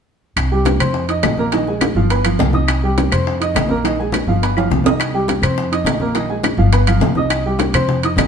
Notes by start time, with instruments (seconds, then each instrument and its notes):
0.36 upright bass C2, high bongo, high conga, high timbale, claves
0.51 upright piano G3 G4 G5, high conga
0.65 high bongo, high conga, high timbale, low timbale
0.80 upright bass F2, upright piano C4 C5 C6, high conga, low conga, high timbale, claves
0.94 high bongo, high conga
1.09 upright piano D#4 D#5 D#6, high conga, high timbale
1.23 upright bass A#1, high bongo, low bongo, high conga, high timbale, low timbale, claves
1.37 upright piano A#3 A#4 A#5, high conga
1.52 upright piano D#3 D#4 D#5, high bongo, high conga, high timbale
1.67 upright piano G#3 G#4 G#5, high bongo, high conga
1.81 high bongo, high conga, high timbale, low timbale, claves
1.95 upright bass G1, upright piano F3 F4 F5, high conga
2.10 upright piano B3 B4 B5, high bongo, high conga, high timbale
2.24 upright piano F3 F4 F5, high bongo, high conga, high timbale, claves
2.39 upright bass C2, high bongo, low bongo, high conga, low timbale
2.53 upright piano D#4 D#5 D#6, high bongo, high conga
2.68 high bongo, high conga, high timbale, claves
2.83 upright piano G3 G4 G5, high conga
2.98 high bongo, high conga, high timbale, low timbale
3.12 upright bass F2, upright piano C4 C5 C6, high conga, low conga, high timbale, claves
3.26 high bongo, high conga
3.40 upright piano D#4 D#5 D#6, high conga, high timbale
3.55 upright bass A#1, high bongo, low bongo, high conga, high timbale, low timbale, claves
3.69 upright piano A#3 A#4 A#5, high conga
3.83 upright piano D#3 D#4 D#5, high bongo, high conga, high timbale
3.98 upright piano G#3 G#4 G#5, high bongo, high conga
4.12 high bongo, high conga, high timbale, low timbale, claves
4.27 upright bass G1, upright piano F3 F4 F5, high conga
4.42 upright piano B3 B4 B5, high bongo, high conga, high timbale
4.57 upright piano F3 F4 F5, high bongo, high conga, high timbale, claves
4.70 upright bass C2, high bongo, low bongo, high conga
4.84 upright piano D#4 D#5 D#6, high bongo, high conga, low timbale
4.99 high bongo, high conga, high timbale, claves
5.14 upright piano G3 G4 G5, high conga
5.28 high bongo, high conga, high timbale, low timbale
5.42 upright bass F2, upright piano C4 C5 C6, high conga, low conga, high timbale, claves
5.57 high bongo, high conga
5.71 upright piano D#4 D#5 D#6, high conga, high timbale
5.85 upright bass A#1, high bongo, low bongo, high conga, high timbale, low timbale, claves
6.00 upright piano A#3 A#4 A#5, high conga
6.15 upright piano D#3 D#4 D#5, high bongo, high timbale
6.29 upright piano G#3 G#4 G#5, high bongo, high conga
6.43 high bongo, high conga, high timbale, low timbale, claves
6.57 upright bass G1, upright piano F3 F4 F5, high conga
6.72 upright piano B3 B4 B5, high bongo, high conga, high timbale
6.87 upright piano F3 F4 F5, high bongo, high conga, high timbale, claves
7.00 upright bass C2, high bongo, low bongo, high conga, low timbale
7.15 upright piano D#4 D#5 D#6, high bongo, high conga
7.30 high bongo, high conga, high timbale, claves
7.44 upright piano G3 G4 G5, high conga
7.59 high bongo, high conga, high timbale, low timbale
7.73 upright bass F2, upright piano C4 C5 C6, high conga, low conga, high timbale, claves
7.88 high bongo, high conga, low conga
8.02 upright piano D#4 D#5 D#6, high conga, high timbale
8.16 upright bass A#1, high bongo, low bongo, high conga, high timbale, low timbale, claves